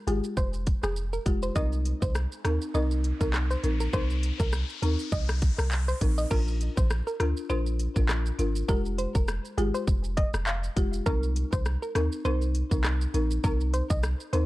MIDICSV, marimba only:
0, 0, Header, 1, 2, 480
1, 0, Start_track
1, 0, Key_signature, -3, "minor"
1, 0, Tempo, 594059
1, 1259, Time_signature, 4, 2, 24, 8
1, 11683, End_track
2, 0, Start_track
2, 0, Title_t, "Marimba"
2, 0, Program_c, 0, 12
2, 57, Note_on_c, 0, 56, 75
2, 59, Note_on_c, 0, 65, 66
2, 61, Note_on_c, 0, 67, 81
2, 281, Note_off_c, 0, 56, 0
2, 282, Note_off_c, 0, 65, 0
2, 283, Note_off_c, 0, 67, 0
2, 1016, Note_on_c, 0, 56, 77
2, 1019, Note_on_c, 0, 65, 68
2, 1021, Note_on_c, 0, 67, 81
2, 1241, Note_off_c, 0, 56, 0
2, 1242, Note_off_c, 0, 65, 0
2, 1243, Note_off_c, 0, 67, 0
2, 1257, Note_on_c, 0, 60, 92
2, 1259, Note_on_c, 0, 63, 82
2, 1261, Note_on_c, 0, 70, 102
2, 1927, Note_off_c, 0, 60, 0
2, 1928, Note_off_c, 0, 63, 0
2, 1929, Note_off_c, 0, 70, 0
2, 1976, Note_on_c, 0, 60, 76
2, 1979, Note_on_c, 0, 63, 68
2, 1981, Note_on_c, 0, 70, 82
2, 2201, Note_off_c, 0, 60, 0
2, 2202, Note_off_c, 0, 63, 0
2, 2203, Note_off_c, 0, 70, 0
2, 2216, Note_on_c, 0, 60, 89
2, 2219, Note_on_c, 0, 63, 86
2, 2221, Note_on_c, 0, 70, 106
2, 2560, Note_off_c, 0, 60, 0
2, 2561, Note_off_c, 0, 63, 0
2, 2562, Note_off_c, 0, 70, 0
2, 2591, Note_on_c, 0, 60, 76
2, 2593, Note_on_c, 0, 63, 71
2, 2595, Note_on_c, 0, 70, 84
2, 2758, Note_off_c, 0, 60, 0
2, 2760, Note_off_c, 0, 63, 0
2, 2761, Note_off_c, 0, 70, 0
2, 2936, Note_on_c, 0, 60, 77
2, 2938, Note_on_c, 0, 63, 68
2, 2941, Note_on_c, 0, 70, 88
2, 3119, Note_off_c, 0, 60, 0
2, 3121, Note_off_c, 0, 63, 0
2, 3122, Note_off_c, 0, 70, 0
2, 3176, Note_on_c, 0, 60, 95
2, 3178, Note_on_c, 0, 63, 84
2, 3181, Note_on_c, 0, 70, 104
2, 3846, Note_off_c, 0, 60, 0
2, 3848, Note_off_c, 0, 63, 0
2, 3849, Note_off_c, 0, 70, 0
2, 3896, Note_on_c, 0, 60, 76
2, 3898, Note_on_c, 0, 63, 71
2, 3900, Note_on_c, 0, 70, 83
2, 4120, Note_off_c, 0, 60, 0
2, 4121, Note_off_c, 0, 63, 0
2, 4123, Note_off_c, 0, 70, 0
2, 4857, Note_on_c, 0, 60, 74
2, 4859, Note_on_c, 0, 63, 70
2, 4861, Note_on_c, 0, 70, 88
2, 5081, Note_off_c, 0, 60, 0
2, 5082, Note_off_c, 0, 63, 0
2, 5083, Note_off_c, 0, 70, 0
2, 5096, Note_on_c, 0, 62, 89
2, 5098, Note_on_c, 0, 65, 88
2, 5101, Note_on_c, 0, 70, 102
2, 5766, Note_off_c, 0, 62, 0
2, 5768, Note_off_c, 0, 65, 0
2, 5769, Note_off_c, 0, 70, 0
2, 5816, Note_on_c, 0, 62, 77
2, 5818, Note_on_c, 0, 65, 73
2, 5821, Note_on_c, 0, 70, 82
2, 6040, Note_off_c, 0, 62, 0
2, 6041, Note_off_c, 0, 65, 0
2, 6043, Note_off_c, 0, 70, 0
2, 6056, Note_on_c, 0, 62, 96
2, 6059, Note_on_c, 0, 65, 90
2, 6061, Note_on_c, 0, 70, 105
2, 6399, Note_off_c, 0, 62, 0
2, 6401, Note_off_c, 0, 65, 0
2, 6402, Note_off_c, 0, 70, 0
2, 6431, Note_on_c, 0, 62, 81
2, 6433, Note_on_c, 0, 65, 68
2, 6436, Note_on_c, 0, 70, 85
2, 6598, Note_off_c, 0, 62, 0
2, 6600, Note_off_c, 0, 65, 0
2, 6601, Note_off_c, 0, 70, 0
2, 6777, Note_on_c, 0, 62, 78
2, 6779, Note_on_c, 0, 65, 70
2, 6781, Note_on_c, 0, 70, 87
2, 6960, Note_off_c, 0, 62, 0
2, 6961, Note_off_c, 0, 65, 0
2, 6962, Note_off_c, 0, 70, 0
2, 7017, Note_on_c, 0, 56, 95
2, 7019, Note_on_c, 0, 65, 84
2, 7021, Note_on_c, 0, 67, 108
2, 7687, Note_off_c, 0, 56, 0
2, 7688, Note_off_c, 0, 65, 0
2, 7689, Note_off_c, 0, 67, 0
2, 7737, Note_on_c, 0, 56, 78
2, 7739, Note_on_c, 0, 65, 72
2, 7741, Note_on_c, 0, 67, 84
2, 7961, Note_off_c, 0, 56, 0
2, 7962, Note_off_c, 0, 65, 0
2, 7963, Note_off_c, 0, 67, 0
2, 8697, Note_on_c, 0, 56, 76
2, 8699, Note_on_c, 0, 65, 75
2, 8702, Note_on_c, 0, 67, 86
2, 8921, Note_off_c, 0, 56, 0
2, 8922, Note_off_c, 0, 65, 0
2, 8923, Note_off_c, 0, 67, 0
2, 8937, Note_on_c, 0, 60, 100
2, 8939, Note_on_c, 0, 63, 86
2, 8942, Note_on_c, 0, 70, 107
2, 9607, Note_off_c, 0, 60, 0
2, 9608, Note_off_c, 0, 63, 0
2, 9610, Note_off_c, 0, 70, 0
2, 9657, Note_on_c, 0, 60, 78
2, 9659, Note_on_c, 0, 63, 75
2, 9662, Note_on_c, 0, 70, 89
2, 9881, Note_off_c, 0, 60, 0
2, 9882, Note_off_c, 0, 63, 0
2, 9883, Note_off_c, 0, 70, 0
2, 9897, Note_on_c, 0, 60, 94
2, 9899, Note_on_c, 0, 63, 88
2, 9902, Note_on_c, 0, 70, 102
2, 10240, Note_off_c, 0, 60, 0
2, 10241, Note_off_c, 0, 63, 0
2, 10242, Note_off_c, 0, 70, 0
2, 10271, Note_on_c, 0, 60, 76
2, 10274, Note_on_c, 0, 63, 71
2, 10276, Note_on_c, 0, 70, 85
2, 10439, Note_off_c, 0, 60, 0
2, 10440, Note_off_c, 0, 63, 0
2, 10441, Note_off_c, 0, 70, 0
2, 10617, Note_on_c, 0, 60, 77
2, 10620, Note_on_c, 0, 63, 74
2, 10622, Note_on_c, 0, 70, 86
2, 10800, Note_off_c, 0, 60, 0
2, 10801, Note_off_c, 0, 63, 0
2, 10803, Note_off_c, 0, 70, 0
2, 10857, Note_on_c, 0, 60, 97
2, 10860, Note_on_c, 0, 63, 88
2, 10862, Note_on_c, 0, 70, 103
2, 11527, Note_off_c, 0, 60, 0
2, 11528, Note_off_c, 0, 63, 0
2, 11530, Note_off_c, 0, 70, 0
2, 11577, Note_on_c, 0, 60, 79
2, 11579, Note_on_c, 0, 63, 70
2, 11582, Note_on_c, 0, 70, 82
2, 11683, Note_off_c, 0, 60, 0
2, 11683, Note_off_c, 0, 63, 0
2, 11683, Note_off_c, 0, 70, 0
2, 11683, End_track
0, 0, End_of_file